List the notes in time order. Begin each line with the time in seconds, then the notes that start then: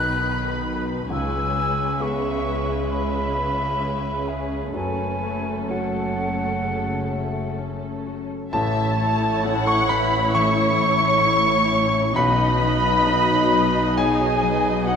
Already playing: B1 B2 D#3 F#3 B3 D#4 B4 B5 F#6
0.22 D#4
0.66 B4
1.10 C#2 C#3 G#3 C#4 B4 G#5 E6
1.55 B3
2.00 B3 C#4 G#4 E5 C#6
2.46 G#4
2.89 G#3 E5 B5
3.35 B3
3.80 C#4
4.27 G#4 E5
4.73 F#1 F#2 A3 C#4 A4 B4 G#5
5.21 A3
5.69 A3 C#4 F#4 A4 F#5
6.17 F#4
6.64 C#3
7.11 A3
7.59 C#4
8.07 F#4
8.53 A1 A2 A3 E4 A4 C#5 E5 A5
8.98 A3 C#5
9.44 A3 C#4 E4 F#5
9.67 C#5 C#6
9.89 C#4 B4 B5
10.34 E3 C#5 E5 C#6
10.80 A3 C#5
11.26 E4
11.71 C#4
12.16 B1 B2 F#3 D#4 B4 D#5 B5
12.61 F#3
13.07 F#3 D#4
13.52 F#3
13.97 B3 G#4 C#5 G#5
14.42 F#3 B4
14.87 D#4 F#4 C#5 F#5